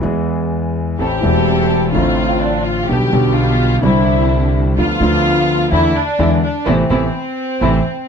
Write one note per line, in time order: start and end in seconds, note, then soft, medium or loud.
0.01 0.94 E2 medium
0.01 0.94 E3 medium
0.01 0.94 G#3 medium
0.01 0.95 B3 medium
0.06 0.95 G#4 medium
0.99 1.19 A1 medium
0.99 1.19 A2 medium
0.99 1.19 E3 soft
0.99 1.19 A3 soft
0.99 1.19 C4 medium
0.99 1.19 C4 soft
0.99 1.19 E4 soft
0.99 1.91 G4 loud
0.99 1.19 A4 soft
0.99 1.19 A4 medium
1.21 1.91 E1 medium
1.21 1.91 E2 medium
1.21 1.90 E3 medium
1.21 1.90 A3 medium
1.21 1.91 C4 medium
1.21 1.91 E4 medium
1.21 1.91 A4 medium
1.25 1.92 A4 medium
1.92 2.85 A1 medium
1.92 2.85 A2 medium
1.92 2.84 D3 medium
1.92 2.84 A3 medium
1.92 2.85 C4 medium
1.92 2.85 D4 medium
1.92 2.38 F4 medium
1.92 2.85 F4 medium
1.97 2.86 F4 medium
2.41 2.65 D4 medium
2.64 2.89 F4 medium
2.88 3.09 B1 medium
2.88 3.09 B2 medium
2.88 3.09 D3 soft
2.88 3.09 G3 soft
2.88 3.09 B3 soft
2.88 3.10 B3 medium
2.88 3.10 D4 soft
2.88 3.36 G4 medium
2.88 3.09 G4 medium
2.88 3.10 G4 medium
3.11 3.80 B1 medium
3.11 3.80 B2 medium
3.11 3.79 D3 medium
3.11 3.80 G3 medium
3.11 3.80 B3 medium
3.11 3.80 D4 medium
3.11 3.80 G4 medium
3.15 3.81 G4 medium
3.35 3.83 F4 medium
3.81 4.73 C2 loud
3.81 4.73 C2 medium
3.81 4.73 C3 medium
3.81 4.72 D3 medium
3.81 4.73 G3 medium
3.81 4.73 C4 medium
3.81 4.73 D4 medium
3.81 4.50 E4 medium
3.81 4.73 E4 medium
3.81 4.74 E4 medium
4.77 4.97 D2 medium
4.77 4.97 D3 medium
4.77 4.97 F3 soft
4.77 4.97 B3 medium
4.77 4.98 B3 soft
4.77 4.97 D4 medium
4.77 4.97 F4 medium
4.77 5.68 F4 loud
4.77 4.98 F4 medium
5.00 5.68 D2 loud
5.00 5.68 D2 medium
5.00 5.68 D3 medium
5.00 5.68 F3 medium
5.00 5.68 B3 medium
5.00 5.69 B3 medium
5.00 5.68 D4 medium
5.00 5.68 F4 medium
5.00 5.69 F4 medium
5.71 5.91 E2 loud
5.71 5.92 E2 medium
5.71 5.92 D3 medium
5.71 5.92 E3 medium
5.71 5.91 A3 medium
5.71 5.92 A3 medium
5.71 5.92 B3 medium
5.71 5.91 D4 medium
5.71 5.92 E4 medium
5.71 5.96 E4 loud
5.71 5.92 E4 medium
5.96 6.43 D4 medium
6.19 6.39 E2 medium
6.19 6.39 D3 medium
6.19 6.39 E3 medium
6.19 6.39 G#3 medium
6.19 6.39 B3 medium
6.19 6.39 D4 medium
6.19 6.39 E4 medium
6.44 6.65 D4 medium
6.66 6.84 A1 loud
6.66 6.82 C3 medium
6.66 6.82 E3 loud
6.66 6.82 A3 medium
6.66 6.81 B3 loud
6.66 6.81 C4 medium
6.66 8.08 C4 medium
6.66 6.81 E4 loud
6.90 7.08 A1 medium
6.90 7.06 C3 medium
6.90 7.06 E3 medium
6.90 7.06 A3 medium
6.90 7.05 B3 medium
6.90 7.05 C4 medium
6.90 7.05 E4 medium
7.61 7.79 A1 medium
7.61 7.77 C3 medium
7.61 7.77 E3 medium
7.61 7.77 A3 medium
7.61 7.77 B3 medium
7.61 7.77 C4 medium
7.61 7.77 E4 medium